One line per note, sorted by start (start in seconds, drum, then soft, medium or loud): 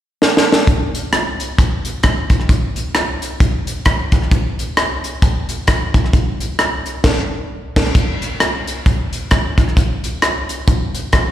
0.22 snare medium
0.37 snare medium
0.52 snare medium
0.67 kick loud
0.67 closed hi-hat medium
0.95 closed hi-hat medium
1.13 cross-stick medium
1.13 closed hi-hat medium
1.40 closed hi-hat medium
1.58 kick medium
1.58 closed hi-hat medium
1.85 closed hi-hat medium
2.03 kick medium
2.03 cross-stick medium
2.03 closed hi-hat medium
2.30 kick medium
2.30 closed hi-hat medium
2.40 cross-stick soft
2.49 kick loud
2.49 closed hi-hat medium
2.76 closed hi-hat medium
2.95 cross-stick loud
2.95 closed hi-hat medium
3.22 closed hi-hat medium
3.40 kick loud
3.40 closed hi-hat medium
3.67 closed hi-hat medium
3.85 kick medium
3.85 cross-stick medium
3.85 closed hi-hat medium
4.12 kick medium
4.12 cross-stick soft
4.12 closed hi-hat medium
4.22 cross-stick soft
4.31 kick loud
4.31 closed hi-hat medium
4.59 closed hi-hat medium
4.77 cross-stick loud
4.77 closed hi-hat medium
5.04 closed hi-hat medium
5.22 kick medium
5.22 closed hi-hat medium
5.49 closed hi-hat medium
5.67 kick medium
5.67 cross-stick loud
5.67 closed hi-hat medium
5.94 kick medium
5.94 closed hi-hat medium
6.04 cross-stick soft
6.13 kick medium
6.13 closed hi-hat medium
6.41 closed hi-hat medium
6.59 cross-stick medium
6.59 closed hi-hat medium
6.86 closed hi-hat medium
7.04 kick medium
7.04 snare medium
7.04 crash medium
7.76 kick medium
7.76 snare medium
7.76 crash medium
7.95 kick medium
7.95 closed hi-hat medium
8.22 closed hi-hat medium
8.40 cross-stick loud
8.40 closed hi-hat medium
8.67 closed hi-hat medium
8.86 kick loud
8.86 closed hi-hat medium
9.13 closed hi-hat medium
9.31 kick medium
9.31 cross-stick loud
9.31 closed hi-hat medium
9.58 kick medium
9.58 cross-stick soft
9.58 closed hi-hat medium
9.68 cross-stick soft
9.77 kick loud
9.77 closed hi-hat medium
10.04 closed hi-hat medium
10.22 cross-stick loud
10.22 closed hi-hat medium
10.49 closed hi-hat medium
10.68 kick loud
10.68 closed hi-hat medium
10.95 closed hi-hat medium
11.13 kick medium
11.13 cross-stick medium
11.13 closed hi-hat medium